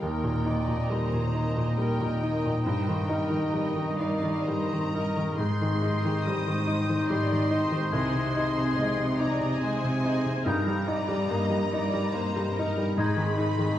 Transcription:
0.01 cello section D#2, grand piano D#2, clarinet D#4, viola section A#4, oboe D#5, violin section G5, flute section A#5
0.23 grand piano A#2
0.45 grand piano D#4, violin section A#4 D#5, viola section D5
0.68 grand piano A#2
0.90 cello section D#2, grand piano G3, viola section C5, violin section A#5
1.13 grand piano A#2
1.34 grand piano D#4, violin section A#4 D#5
1.57 grand piano A#2
1.77 cello section D#2, grand piano G3, viola section A#4, violin section G5
2.01 grand piano A#2
2.20 grand piano D#4, violin section A#4 D#5, viola section D#5
2.45 grand piano A#2
2.64 cello section G2, grand piano G2, violin section A#4 D#5 G5, viola section C5
2.88 grand piano D#3
3.09 grand piano D#4, viola section A#4, violin section A#4 D#5
3.30 grand piano D#3
3.52 cello section G2, grand piano G3, viola section D#5
3.75 grand piano D#3
3.98 grand piano D#4, violin section A#4 D#5 F5, viola section D5
4.23 grand piano D#3
4.46 cello section G2, grand piano G3, viola section C5, violin section A#5
4.72 grand piano D#3
4.92 grand piano D#4, violin section A#4 D#5, viola section A#4
5.16 grand piano D#3
5.36 cello section G#2, grand piano G#2, clarinet D#4, viola section G#4, oboe D#5, violin section C6, flute section G6
5.61 grand piano D#3
5.81 grand piano D#4, violin section G4 D#5
6.05 grand piano D#3
6.24 cello section G#2, grand piano G3, viola section C5, violin section D#6
6.47 grand piano D#3
6.67 grand piano D#4, violin section G4 D#5
6.89 grand piano D#3
7.09 cello section G#2, grand piano G3, viola section D5, violin section C6
7.31 grand piano D#3
7.49 grand piano D#4, violin section G4 D#5, viola section C5
7.72 grand piano D#3
7.91 grand piano C2, cello section C3, violin section G#4 D#5 C6, flute section G#6
8.15 grand piano C3
8.33 grand piano D#4, violin section G#4 D#5
8.58 grand piano C3
8.76 cello section C3, grand piano G#3, viola section D#5
8.99 grand piano C3
9.17 grand piano D#4, violin section G#4 D#5 A#5, viola section D5
9.40 grand piano C3
9.60 cello section C3, grand piano G#3, viola section C5, violin section G#5
9.84 grand piano C3
10.02 grand piano D#4, violin section G#4 D#5, viola section C5
10.26 grand piano C3
10.44 cello section G2, grand piano G2, clarinet D#4, viola section A#4, oboe D#5, violin section A#5, flute section G6
10.67 grand piano G3
10.87 violin section D#4 D#5, grand piano D#4, viola section D5
11.09 grand piano G3
11.30 cello section G2, grand piano A#3, viola section D#5
11.50 grand piano G3
11.71 violin section D#4 D#5, grand piano D#4, viola section D5
11.94 grand piano G3
12.14 cello section G2, grand piano A#3, viola section C5
12.36 grand piano G3
12.55 violin section D#4 D#5, grand piano D#4, viola section A#4
12.77 grand piano G3
12.96 cello section G#2, grand piano G#2, violin section D#4 D#5 B5, clarinet D#4, viola section G#4, oboe D#5, flute section G#6
13.16 grand piano D#3
13.37 violin section D#4 D#5, grand piano D#4
13.58 grand piano D#3

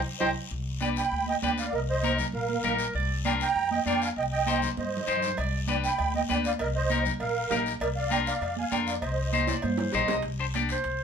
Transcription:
0.20 upright bass C2, clean electric guitar G4 A#4 C5, accordion C5 D#5 G5, clarinet C5, low conga, high timbale, long guiro
0.51 upright bass C2, long guiro
0.80 clean electric guitar D4 G4 B4, accordion D5 G5, high conga, short guiro
0.96 accordion G5 B5, short guiro
1.12 upright bass D2, long guiro
1.26 accordion D#5 G5, high conga
1.42 upright bass D2, clean electric guitar D4 G4 B4, accordion D5 G5, high conga, short guiro
1.58 accordion D5 F5, short guiro
1.73 upright bass C2, accordion A#4 D#5, long guiro
1.90 accordion C5 D#5
2.03 clean electric guitar D#4 G4 A#4, high conga, short guiro
2.19 low conga, short guiro
2.32 upright bass A#1, accordion A#4 F5, long guiro
2.49 high conga
2.63 upright bass A#1, clean electric guitar D#4 G4 A#4, clarinet A#4, high conga, low conga, short guiro
2.79 short guiro
2.94 upright bass C2, clarinet D5, long guiro
3.25 clean electric guitar D4 F4 A#4, accordion D5 G5, high conga, short guiro
3.40 accordion G5 A#5, short guiro
3.55 upright bass F2, long guiro
3.71 accordion D#5 G5, high conga
3.86 upright bass F2, clean electric guitar D4 F4 A#4, accordion D5 G5, high conga, short guiro
4.02 accordion F5 G#5, short guiro
4.16 upright bass C2, accordion D#5 G5, long guiro
4.32 accordion D#5 G5
4.46 clean electric guitar D#4 G4 C5, high conga, short guiro
4.62 low conga, short guiro
4.77 upright bass G2, accordion C5 D#5, high conga, long guiro
4.97 low conga
5.07 upright bass G2, clean electric guitar D#4 G4 C5, clarinet C5, short guiro
5.17 low conga
5.22 short guiro
5.27 low conga
5.37 upright bass C2, clarinet D5, cowbell, long guiro
5.67 clean electric guitar D4 G4 B4, accordion D5 G5, high conga, short guiro
5.84 accordion G5 B5, short guiro
5.98 upright bass D2, cowbell, long guiro
6.14 accordion D#5 G5, high conga
6.29 upright bass D2, clean electric guitar D4 G4 B4, accordion D5 G5, high conga, short guiro
6.44 accordion D5 F5, short guiro
6.59 upright bass C2, accordion A#4 D#5, cowbell, long guiro
6.76 accordion C5 D#5
6.90 clean electric guitar D#4 G4 A#4, high conga, short guiro
7.05 low conga, short guiro
7.20 upright bass A#1, accordion A#4 F5, cowbell, long guiro
7.50 upright bass A#1, clean electric guitar D#4 G4 A#4, high conga, low conga, low timbale, short guiro
7.66 short guiro
7.80 upright bass C2, accordion A#4 D5, cowbell, long guiro
7.96 accordion D5 F5
8.10 clean electric guitar D4 F4 A#4, accordion D5 G5, high conga, short guiro
8.27 accordion D5 F5, short guiro
8.41 upright bass F2, cowbell, long guiro
8.56 accordion F5 G#5, high conga
8.72 upright bass F2, clean electric guitar D4 F4 A#4, accordion D5 G5, high conga, short guiro
8.87 accordion D5 F5, short guiro
9.01 upright bass C2, accordion C5 D#5, cowbell, long guiro
9.32 clean electric guitar D#4 G4 C5, clarinet D#5, high conga, short guiro
9.47 clarinet D5, high conga, high timbale, short guiro
9.62 upright bass G2, clarinet C5, cowbell, high conga, long guiro
9.78 clarinet C5, low conga, high timbale
9.92 upright bass A#1, clean electric guitar D#4 G4 C5, clarinet D#5, low conga, low timbale, short guiro
10.08 upright bass C2, low conga, low timbale, short guiro
10.22 upright bass C2, high conga, high timbale, long guiro
10.39 clean electric guitar D4 G4 C5
10.54 clean electric guitar D4 G4 D5, high conga, high timbale, short guiro
10.69 clarinet C5, high timbale, short guiro
10.84 upright bass C2, high conga, high timbale, long guiro

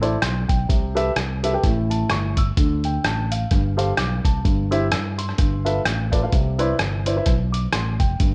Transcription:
Already playing: fingered electric bass A1
0.01 upright piano E4 A4 C5 D5, closed hi-hat
0.22 fingered electric bass B1, upright piano C6, cross-stick, closed hi-hat
0.48 fingered electric bass B1, upright piano G5, kick, closed hi-hat
0.69 fingered electric bass C2, upright piano C3, kick, closed hi-hat
0.95 upright piano G4 A4 B4 E5, closed hi-hat
1.16 fingered electric bass C2, cross-stick, closed hi-hat
1.43 upright piano G4 A4 B4 E5, closed hi-hat
1.53 upright piano G4 A4 B4 G5
1.63 fingered electric bass A1, upright piano A2, kick, cross-stick, closed hi-hat
1.90 upright piano A5, closed hi-hat
2.10 fingered electric bass G1, upright piano C#6, cross-stick, closed hi-hat
2.37 upright piano E6, kick, closed hi-hat
2.57 fingered electric bass D2, upright piano D3, kick, closed hi-hat
2.84 upright piano G5, closed hi-hat
3.04 fingered electric bass A1, upright piano A5, cross-stick, closed hi-hat
3.31 upright piano F5, closed hi-hat
3.51 fingered electric bass G1, upright piano G2, kick, cross-stick, closed hi-hat
3.77 upright piano G4 A4 C5 F5, closed hi-hat
3.97 fingered electric bass B1, upright piano D6, cross-stick, closed hi-hat
4.25 fingered electric bass C2, upright piano A5, kick, closed hi-hat
4.45 fingered electric bass G1, upright piano G2, kick, closed hi-hat
4.71 upright piano E4 G4 C5 E5, closed hi-hat
4.92 fingered electric bass G2, upright piano E6, cross-stick, closed hi-hat
5.18 upright piano C6, closed hi-hat
5.29 cross-stick
5.38 fingered electric bass G1, upright piano G2, kick, cross-stick, closed hi-hat
5.65 upright piano F4 A4 B4 E5, closed hi-hat
5.85 fingered electric bass A1, cross-stick, closed hi-hat
6.12 upright piano F4 A4 B4 D5, kick, closed hi-hat
6.22 upright piano F4 A4 B4 F5
6.32 fingered electric bass C2, upright piano C3, kick, closed hi-hat
6.59 upright piano E4 B4 C5 D5, closed hi-hat
6.79 fingered electric bass G1, cross-stick, closed hi-hat
7.06 upright piano E4 B4 C5 D5, closed hi-hat
7.16 upright piano E4 B4 C5 E5
7.26 fingered electric bass B1, kick, cross-stick, closed hi-hat
7.52 upright piano D6, closed hi-hat
7.73 fingered electric bass A1, upright piano C6, cross-stick, closed hi-hat
8.00 fingered electric bass F1, upright piano G5, kick, closed hi-hat
8.20 fingered electric bass G1, upright piano G2, kick, closed hi-hat

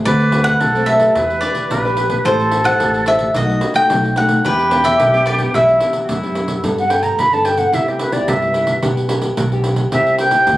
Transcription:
0.05 upright bass D2, nylon-string guitar D3 A3 C4 F#4, flute B4, cavaquinho D5, pandeiro
0.20 pandeiro
0.32 nylon-string guitar A3 C4 F#4, pandeiro
0.44 cavaquinho F#5, pandeiro
0.60 upright bass B1, nylon-string guitar A2, flute A4, pandeiro
0.75 nylon-string guitar A3 C4 F#4, pandeiro
0.86 cavaquinho E5, pandeiro
1.00 nylon-string guitar D4 G4 B4, pandeiro
1.15 upright bass E2, nylon-string guitar E3, flute B4, pandeiro
1.30 pandeiro
1.41 nylon-string guitar D4 G4 B4, cavaquinho D5, pandeiro
1.55 pandeiro
1.70 upright bass A#1, flute B4, pandeiro
1.85 nylon-string guitar D4 G4 B4, pandeiro
1.97 pandeiro
2.10 pandeiro
2.25 upright bass A1, nylon-string guitar A3 E4 G4 C5, flute A4, cavaquinho C5, pandeiro
2.40 pandeiro
2.51 pandeiro
2.64 nylon-string guitar E4 G4 C5, cavaquinho F#5, pandeiro
2.80 upright bass A1, nylon-string guitar E3, pandeiro
2.94 pandeiro
3.06 nylon-string guitar E4 G4 C5, cavaquinho E5, pandeiro
3.19 pandeiro
3.34 upright bass B1, nylon-string guitar B2 A3 D#4 F#4, flute F#4, cavaquinho D#5, pandeiro
3.49 pandeiro
3.61 pandeiro
3.74 nylon-string guitar A3 D#4, cavaquinho G5, pandeiro
3.90 upright bass B1, nylon-string guitar F#3, pandeiro
4.04 pandeiro
4.16 nylon-string guitar A3 D#4 F#4, cavaquinho F#5, pandeiro
4.29 pandeiro
4.44 upright bass E2, nylon-string guitar E3 B3 D4 G4, flute G4, cavaquinho B4, pandeiro
4.59 pandeiro
4.71 nylon-string guitar B3 D4 G4, pandeiro
4.84 cavaquinho E5, pandeiro
5.00 upright bass B1, nylon-string guitar B2, pandeiro
5.14 nylon-string guitar B3 D4 G4, pandeiro
5.26 cavaquinho D5, pandeiro
5.38 nylon-string guitar B3 D4 G4, pandeiro
5.54 upright bass B1, nylon-string guitar E3 B3 D4 G4, flute E4, cavaquinho E5, pandeiro
5.68 pandeiro
5.80 nylon-string guitar B3 D4 G4, pandeiro
5.93 pandeiro
6.03 flute F#4
6.09 upright bass F#2, nylon-string guitar B2, flute E4, pandeiro
6.23 nylon-string guitar B3 D4 G4, pandeiro
6.35 pandeiro
6.48 pandeiro
6.63 upright bass G2, nylon-string guitar G3 B3 D4 A4, pandeiro
6.78 flute F#5, pandeiro
6.90 nylon-string guitar B3 D4 A4, flute G5, pandeiro
7.03 flute A#5, pandeiro
7.18 upright bass G2, nylon-string guitar D3, flute B5, pandeiro
7.33 nylon-string guitar B3 D4 A4, flute A5, pandeiro
7.45 flute G5, pandeiro
7.57 flute F#5, pandeiro
7.73 upright bass C2, nylon-string guitar C3 B3 E4 G4, flute E5, pandeiro
7.88 flute G4, pandeiro
7.99 flute B4, pandeiro
8.12 nylon-string guitar B3 E4 G4, flute D5, pandeiro
8.28 upright bass C2, nylon-string guitar G2, flute E5, pandeiro
8.42 pandeiro
8.54 nylon-string guitar B3 E4 G4, pandeiro
8.67 pandeiro
8.82 upright bass B1, nylon-string guitar B2 B3 D4 G4, pandeiro
8.97 pandeiro
9.09 nylon-string guitar B3 D4 G4, pandeiro
9.22 pandeiro
9.37 upright bass B1, nylon-string guitar B2, pandeiro
9.52 nylon-string guitar B3 D4 G4, pandeiro
9.64 pandeiro
9.76 pandeiro
9.92 upright bass C2, nylon-string guitar C3 C4 E4 G4, flute E5, pandeiro
10.06 pandeiro
10.18 flute G5, pandeiro
10.31 nylon-string guitar C4 E4 G4, pandeiro
10.47 upright bass D2, nylon-string guitar G2, pandeiro

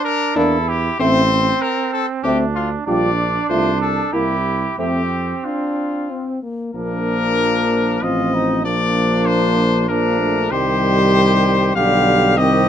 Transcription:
Already playing: flugelhorn D4
0.05 trumpet A#4
0.36 tuba E2, euphonium A#3, french horn D4, flugelhorn E4, trumpet A4
0.69 trumpet G4
0.99 tuba A1, euphonium A3, flugelhorn C4, french horn C4, trumpet C5
1.62 trumpet A#4
1.93 trumpet A4
2.24 tuba D2, euphonium A3, french horn C4, flugelhorn D4, trumpet G4
2.55 trumpet F4
2.87 tuba A#1, euphonium G3, flugelhorn D4, french horn F4, trumpet D5
3.49 tuba C2, euphonium A3, french horn F4, trumpet C5
3.81 trumpet A4
4.13 tuba C2, euphonium A#3, flugelhorn E4, french horn E4, trumpet G4
4.78 tuba F2, euphonium A3, french horn C4, flugelhorn C4, trumpet G4
5.45 french horn D4, trumpet F4
6.11 french horn C4
6.43 french horn A#3
6.74 tuba A#1, euphonium F3, french horn A#3, flugelhorn D4, trumpet A#4
8.02 tuba A1, euphonium F3, french horn C4, flugelhorn F4, trumpet D#5
8.35 flugelhorn D#4
8.65 tuba A#1, euphonium F3, french horn A#3, flugelhorn D4, trumpet D5
9.26 trumpet C5
9.89 euphonium F3, french horn A#3, flugelhorn D4, trumpet A#4
10.20 french horn A3
10.51 tuba C2, euphonium D#3, french horn G3, flugelhorn G4, trumpet C5
11.76 tuba B1, euphonium D3, french horn G3, flugelhorn G4, trumpet F5
12.37 tuba C2, euphonium D#3, french horn C4, flugelhorn G4, trumpet D#5

